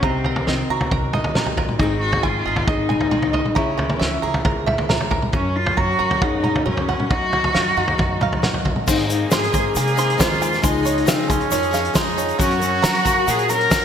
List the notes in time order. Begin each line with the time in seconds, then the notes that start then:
0.02 C2 C3 C4 D#4 A#5, kick, floor tom
0.24 A#4, floor tom
0.36 floor tom
0.47 C2 D#3 D#5, snare
0.69 C2 F#4 A#5
0.81 floor tom
0.91 C2 F#2 A#4, kick, floor tom
1.13 F2 D#4 D#5, floor tom, mid tom
1.24 floor tom
1.35 F#2 C3 A#5, snare, mid tom
1.46 floor tom
1.57 G#2 A#2 A#4, kick, floor tom
1.69 mid tom
1.78 G#1 G#2 D#3 C4 D#4 G#4, kick, floor tom
1.82 D#4 G#4
2.00 F#4
2.13 floor tom
2.23 G#1 D#3 F4 G#5, kick
2.45 G#1 D#4 G#4
2.56 floor tom
2.66 G#1 G#2 D#4 D#5, kick, floor tom
2.89 D#4 G#5, mid tom
3.01 floor tom
3.11 C2 D#3 G#4, mid tom
3.22 floor tom
3.33 D#5, floor tom
3.46 mid tom
3.55 C#2 C#3 C#4 E4 A#5, kick, floor tom
3.78 A#4, floor tom
3.90 floor tom
3.99 C#2 E3 E5, snare
4.22 C#2 G#4 A#5
4.34 floor tom
4.45 C#2 G#2 A#4, kick, floor tom
4.66 E4 E5, floor tom, mid tom
4.78 floor tom
4.89 C#2 E3 A#5, snare, mid tom
5.01 floor tom
5.11 A#4, kick, floor tom
5.22 mid tom
5.33 F#2 C#4 A#4, kick, floor tom
5.56 F4
5.66 floor tom
5.71 F4
5.77 F#2 F#3 F#4 A#5, kick
5.99 F#2 C#4 A#4
6.11 floor tom
6.22 F#2 C#3 D#4 F#5, kick, floor tom
6.44 C#4 A#5, mid tom
6.56 floor tom
6.66 F#2 F#3 C#4 A#4, mid tom
6.77 floor tom
6.89 F#5, floor tom
7.00 mid tom
7.10 F#2 D#4 F#4 F#5, kick, floor tom
7.33 F#4, floor tom
7.44 floor tom
7.54 F#2 D#3 F5, snare
7.77 F#2 D#4 F#5
7.88 floor tom
7.98 F#2 F#4, kick, floor tom
8.21 D#4 F5, floor tom, mid tom
8.33 floor tom
8.42 F#2 D#3 F#5, snare, mid tom
8.54 floor tom
8.65 F#4, kick, floor tom
8.76 mid tom
8.87 G#1 G#2 D#3 G#3 A#3 C4 D#4 G#4 C5, kick, crash, shaker
8.99 closed hi-hat
9.07 G#3 C4 D#4 G#4 C5, closed hi-hat, shaker
9.11 D#4
9.30 G#2 D#3 G#3 C4 D#4 G#4 C5 C6, snare, closed hi-hat, shaker
9.43 closed hi-hat
9.53 G#2 G#3 C4 D#4 C5, kick, closed hi-hat, shaker
9.74 C3 G#3 C4 D#4 G#4 C5 G#5, closed hi-hat, shaker
9.87 closed hi-hat, shaker
9.95 G#3 C4 D#4 G#4 C5 C6, closed hi-hat, shaker
10.10 closed hi-hat
10.17 D#2 G#2 D#3 G#3 C4 D#4 F4 G#4 C5, kick, snare, closed hi-hat, shaker
10.38 G#3 C4 D#4 G#4 C5 G#5, closed hi-hat, shaker
10.53 A#3, snare, shaker
10.61 C#2 C#3 F3 G#3 C#4 D#4 F4 G#4 C6, kick, closed hi-hat, shaker
10.83 F3 C#4 D#4 F4 G#4 C#5, closed hi-hat, shaker
10.98 closed hi-hat
11.04 C#3 F3 G#3 C4 C#4 D#4 F4 G#4, shaker
11.08 F5, snare, closed hi-hat
11.28 C#2 F3 C#4 D#4 G#4 C6, kick, closed hi-hat, shaker
11.41 closed hi-hat
11.49 F2 F3 G#3 C#4 D#4 F4 G#4 A#4 C#5, closed hi-hat, shaker
11.63 closed hi-hat, shaker
11.71 F3 C#4 D#4 F4 G#4 F5, snare, closed hi-hat, shaker
11.85 closed hi-hat
11.93 F2 C#3 F3 G#3 C#4 D#4 F4 G#4 C6, kick, snare, closed hi-hat, shaker
12.16 F3 C#4 D#4 F4 G#4 C#5, closed hi-hat, shaker
12.28 closed hi-hat, shaker
12.38 F#1 F#2 F#3 A#3 C#4 F#4 A#4, kick, closed hi-hat, shaker
12.51 closed hi-hat
12.59 F#3 A#3 C#4 F#4 A#4, closed hi-hat, shaker
12.82 F#3 A#3 C#4 F#4 A#4 A#5, snare, closed hi-hat, shaker
12.95 closed hi-hat
13.05 F#2 F#3 A#3 C#4 F4 A#4, kick, closed hi-hat, shaker
13.26 A#2 F#3 A#3 C#4 F4 F#4 G#4 A#4 F#5, closed hi-hat, shaker
13.39 closed hi-hat, shaker
13.48 F#3 A#3 C#4 F#4 A#4 A#5, closed hi-hat, shaker
13.61 closed hi-hat
13.70 F#2 F#3 A#3 C#4 F#4 A#4, kick, snare, closed hi-hat, shaker